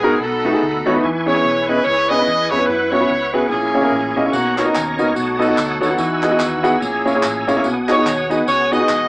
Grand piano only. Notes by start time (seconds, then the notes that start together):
0.03 G#3 B3 D#4 F#4 A#4
0.22 B2
0.45 A3 B3 D#4 F#4 B4
0.52 A3 B3 D#4 F#4 G#4
0.86 A3 B3 D#4 F#4 C#5
0.93 A3 B3 D#4 F#4 B4
1.03 E3
1.26 B3 C#4 E4 G#4 C#5
1.34 B3 C#4 E4 G#4 C#5
1.69 B3 C#4 E4 G#4 D#5
2.10 B3 C#4 E4 G#4 B4
2.19 B3 C#4 E4 G#4 B4
2.51 B3 C#4 E4 G#4 B4
2.58 B3 C#4 E4 G#4 C#5
2.92 B3 C#4 E4 F#4 C#5
3.00 B3 C#4 E4 F#4 B4
3.33 B3 C#4 E4 F#4 G#4
3.49 A#2
3.74 A#3 C#4 E4 G#4 C#5
3.82 A#3 C#4 E4 G#4 A#4
4.16 A#3 C#4 E4 G#4 D#5
4.25 A#3 C#4 E4 G#4 C#5
4.34 B2
4.57 B3 D#4 F#4 A#4 C#5
4.65 B3 D#4 F#4 A#4 D#5
4.98 B3 D#4 F#4 A#4 D#5
5.15 B2
5.39 B3 D#4 F#4 A4 D#5
5.48 B3 D#4 F#4 A4 D#5
5.80 B3 D#4 F#4 A4 C#5
5.89 B3 D#4 F#4 A4 F#5
5.98 E3
6.23 B3 E4 F#4 G#4 D#5
6.31 B3 E4 F#4 G#4 D#5
6.63 B3 E4 F#4 G#4 F#5
6.81 A#2
7.05 A#3 C#4 E4 G#4 C#5
7.15 A#3 C#4 E4 G#4 C#5
7.47 A#3 C#4 E4 G#4 C#5
7.56 A#3 C#4 E4 G#4 C#5
7.65 B2
7.88 B3 D#4 F#4 G#4 D#5
7.97 B3 D#4 F#4 G#4 D#5
8.30 B3 D#4 F#4 G#4 D#5
8.72 B3 D#4 F#4 G#4 D#5
8.79 B3 D#4 F#4 G#4 D#5